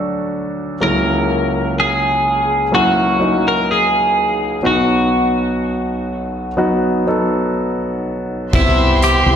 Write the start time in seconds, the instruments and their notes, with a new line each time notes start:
Already playing: grand piano D2 D3 F#3 A3 D4 F#4 A4
0.81 grand piano C#2 C#3 F#3 A#3 C#4 E4, clean electric guitar A#4
1.80 clean electric guitar G#4
2.72 grand piano F#3 A#3 C#4 E4, clean electric guitar F#4
3.19 grand piano F#3 A#3 C#4 D#4
3.48 clean electric guitar A#4
3.71 clean electric guitar G#4
4.63 grand piano B1 B2 F#3 B3 D#4 F#4, clean electric guitar F#4
6.57 grand piano F#3 B3 D#4 F#4
7.06 grand piano F#3 B3 D#4 A4
8.53 fretless electric bass C2, grand piano C3 B3 C4 E4 G4, clean electric guitar E4, string section G4 E5 C6, kick, crash
9.02 clean electric guitar G4, closed hi-hat
9.26 fretless electric bass C2